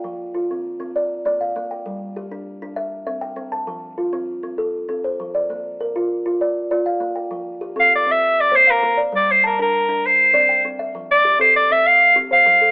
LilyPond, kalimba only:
\new Staff \with { instrumentName = "Kalimba" } { \time 12/8 \key f \major \tempo 4. = 132 << { g''8 r8 f'4. r8 d''4 d''8 f''4 g''8~ | g''8 r8 g'4. r8 e''4 e''8 g''4 a''8~ | a''8 r8 f'4. r8 a'4 a'8 c''4 d''8~ | d''8 r8 bes'4. r8 d''4 d''8 f''4 g''8~ |
g''8 r8 g'8 a'4. r4 c''8 f''4 d''8~ | d''8 r8 a''8 bes'4. r4 d''8 g''4 e''8~ | e''8 r8 g'8 a'4. r4 g'8 c''4 a'8 | } \\ { f4 r8 c'4 c'8 r4 bes4 bes4 | g4 r8 d'4 d'8 r4 c'4 c'4 | f4 r8 c'4 c'4 r8 c'4 f4 | bes4 r8 f'4 f'4 r8 f'4 bes4 |
f4 r8 c'4 c'8 r4 bes4 bes4 | g4 r8 d'4 d'8 r4 c'4 c'4 | f4 r8 c'4 c'4 r8 c'4 f4 | } >> }